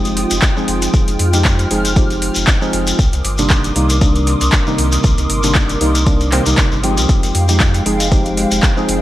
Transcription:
Already playing: F1 F3 G#3 C4 D#4 F4 G4 G5 D#6
0.05 closed hi-hat, shekere
0.17 snare, closed hi-hat, open hi-hat
0.31 F1, closed hi-hat, shekere
0.42 kick, snare, clap, closed hi-hat, shekere
0.56 F3 G#3 C4 D#4 G#4, snare, shekere
0.68 F1, closed hi-hat, open hi-hat
0.82 snare, closed hi-hat, shekere
0.94 F1 F6, kick, closed hi-hat, shekere
1.08 F1, closed hi-hat, shekere
1.19 F2, closed hi-hat, open hi-hat
1.33 F3 G#3 C4 D#4 G4, closed hi-hat, shekere
1.45 kick, snare, clap, closed hi-hat, shekere
1.59 closed hi-hat, shekere
1.70 F1 F3 G#3 C4 D#4 G#4, closed hi-hat, open hi-hat
1.85 closed hi-hat, shekere
1.96 F3 G#3 C4 D#4 G4, kick, closed hi-hat, shekere
2.10 closed hi-hat, shekere
2.22 closed hi-hat, open hi-hat
2.35 F1, closed hi-hat, shekere
2.47 kick, snare, clap, closed hi-hat, shekere
2.61 F3 G#3 C4 D#4 G#4, snare, shekere
2.73 F1, closed hi-hat, open hi-hat
2.87 closed hi-hat, shekere
2.99 C2 A#4 C6 D6 D#6, kick, closed hi-hat, shekere
3.13 C2, closed hi-hat, shekere
3.24 G1, closed hi-hat, open hi-hat
3.38 C3 D#3 G3 A#3 D4, closed hi-hat, shekere
3.50 kick, snare, clap, closed hi-hat, shekere
3.64 closed hi-hat, shekere
3.75 C2 C3 D#3 G3 A#3 D#4, closed hi-hat, open hi-hat
3.90 closed hi-hat, shekere
4.01 C3 D#3 G3 A#3 D4, kick, closed hi-hat, shekere
4.16 closed hi-hat, shekere
4.27 snare, closed hi-hat, open hi-hat
4.41 C2, closed hi-hat, shekere
4.52 kick, snare, clap, closed hi-hat, shekere
4.66 C3 D#3 G3 A#3 D#4, snare, shekere
4.78 C2, closed hi-hat, open hi-hat
4.92 snare, closed hi-hat, shekere
5.04 C2, kick, closed hi-hat, shekere
5.18 C2, closed hi-hat, shekere
5.29 G1, closed hi-hat, open hi-hat
5.43 C3 D#3 G3 A#3 D4, closed hi-hat, shekere
5.55 kick, snare, clap, closed hi-hat, shekere
5.69 closed hi-hat, shekere
5.81 C2 C3 D#3 G3 A#3 D#4, closed hi-hat, open hi-hat
5.95 closed hi-hat, shekere
6.06 C3 D#3 G3 A#3 D4, kick, closed hi-hat, shekere
6.20 closed hi-hat, shekere
6.32 C3 D#3 G3 A#3 C4, clap, closed hi-hat, open hi-hat
6.46 C2 C3 D#3 G3 A#3 D#4, closed hi-hat, shekere
6.57 kick, snare, clap, closed hi-hat, shekere
6.72 G1, snare, shekere
6.83 F3 G#3 C4 D#4 G4, closed hi-hat, open hi-hat
6.97 C2, closed hi-hat, shekere
7.09 F1 G#3 F5 G5, kick, closed hi-hat, shekere
7.23 F1, closed hi-hat, shekere
7.35 F2, closed hi-hat, open hi-hat
7.48 F3 G#3 C4 D#4 G4, closed hi-hat, shekere
7.60 kick, snare, clap, closed hi-hat, shekere
7.74 closed hi-hat, shekere
7.86 F1 F3 G#3 C4 D#4 G#4, closed hi-hat, open hi-hat
8.00 closed hi-hat, shekere
8.11 F3 G#3 C4 D#4 G4, kick, closed hi-hat, shekere
8.25 closed hi-hat, shekere
8.37 snare, closed hi-hat, open hi-hat
8.51 F1, closed hi-hat, shekere
8.63 kick, snare, clap, closed hi-hat, shekere
8.76 F3 G#3 C4 D#4 G#4, snare, shekere
8.88 F1, closed hi-hat, open hi-hat

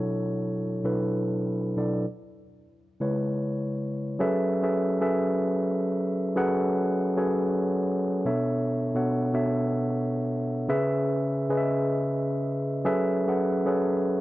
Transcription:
Already playing: B2 F#3 D4 E4 A4 C#5
0.84 B2 F#3 D4 E4 A4 B4
1.76 B2 F#3 D4 E4 A4 D5
3.00 C#3 G#3 E4 B4 C#5
4.19 F#3 C#4 G#4 A4 B4 E5
4.62 F#3 C#4 G#4 A4 B4 E5
5.01 F#3 C#4 G#4 A4 B4 E5
6.36 F#3 C#4 G#4 A4 B4 F#5
7.17 F#3 C#4 G#4 A4 B4 C#5
8.25 B2 B3 D4 A4 C#5 E5
8.95 B2 B3 D4 A4 C#5 F#5
9.33 B2 B3 D4 A4 C#5 E5
10.68 C#3 C#4 G#4 B4 E5
11.49 C#3 C#4 G#4 B4 D#5
11.57 E5
12.85 F#3 C#4 G#4 A4 B4 E5
13.27 F#3 C#4 G#4 A4 B4 F#5
13.66 F#3 C#4 G#4 A4 B4 C#5

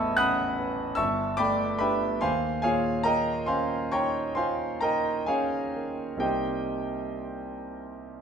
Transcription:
Already playing: A1 E2 A3 B3 C#5 D#5 E5 F#5 G#5 A5 B5 C#6 D#6 E6
0.17 C#4 F#5 B5 D#6 F#6
0.58 B4
0.95 G1 E5 A5 C#6 E6
1.37 A3 D5 G5 B5 D6
1.79 D4 G4 B4 E5 G5 B5
2.21 D#2 C5 F5 G#5 C6
2.62 A#2 G#4 C#5 F5 G#5
3.03 A#3 A#4 D#5 G5 A#5
3.46 C#4 C5 F5 G#5 C6
3.92 D#4 C#5 G5 A#5 C#6
4.35 F4 C5 F5 G#5 C6
4.81 D#4 A#4 D#5 G5 A#5
5.26 C#4 G#4 C#5 F5 G#5
5.75 A#3
6.17 C2 A#3 C4 D#4 G4 D#5 G5
6.21 C5

